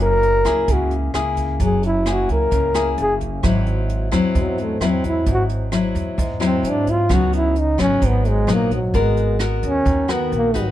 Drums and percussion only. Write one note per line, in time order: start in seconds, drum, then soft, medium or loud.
0.00 closed hi-hat soft
0.23 closed hi-hat soft
0.45 kick soft
0.45 cross-stick medium
0.45 closed hi-hat soft
0.68 kick medium
0.68 closed hi-hat medium
0.91 closed hi-hat soft
1.14 cross-stick medium
1.14 closed hi-hat soft
1.37 kick soft
1.37 closed hi-hat soft
1.60 kick medium
1.60 closed hi-hat medium
1.83 closed hi-hat soft
2.06 cross-stick medium
2.06 closed hi-hat soft
2.29 kick soft
2.29 closed hi-hat soft
2.52 kick medium
2.52 closed hi-hat medium
2.75 cross-stick medium
2.75 closed hi-hat soft
2.98 closed hi-hat soft
3.21 kick soft
3.21 closed hi-hat soft
3.43 kick medium
3.43 cross-stick medium
3.43 closed hi-hat medium
3.66 closed hi-hat soft
3.89 closed hi-hat soft
4.12 kick soft
4.12 cross-stick medium
4.12 closed hi-hat soft
4.35 kick medium
4.35 closed hi-hat medium
4.58 closed hi-hat soft
4.81 cross-stick medium
4.81 closed hi-hat soft
5.04 kick soft
5.04 closed hi-hat soft
5.26 kick medium
5.26 closed hi-hat medium
5.49 closed hi-hat soft
5.72 cross-stick medium
5.72 closed hi-hat soft
5.95 kick soft
5.95 closed hi-hat soft
6.18 kick medium
6.18 closed hi-hat medium
6.41 cross-stick medium
6.41 closed hi-hat soft
6.64 closed hi-hat soft
6.87 kick soft
6.87 closed hi-hat soft
7.10 kick medium
7.10 cross-stick medium
7.10 closed hi-hat medium
7.33 closed hi-hat soft
7.56 closed hi-hat soft
7.79 kick soft
7.79 cross-stick medium
7.79 closed hi-hat soft
8.02 kick medium
8.02 closed hi-hat medium
8.25 closed hi-hat soft
8.48 cross-stick medium
8.48 closed hi-hat soft
8.71 kick soft
8.71 closed hi-hat soft
8.94 kick medium
8.94 closed hi-hat medium
9.17 closed hi-hat soft
9.40 cross-stick medium
9.40 closed hi-hat soft
9.63 kick soft
9.63 closed hi-hat soft
9.86 kick medium
9.86 closed hi-hat medium
10.09 cross-stick medium
10.09 closed hi-hat soft
10.32 closed hi-hat soft
10.55 kick soft
10.55 closed hi-hat medium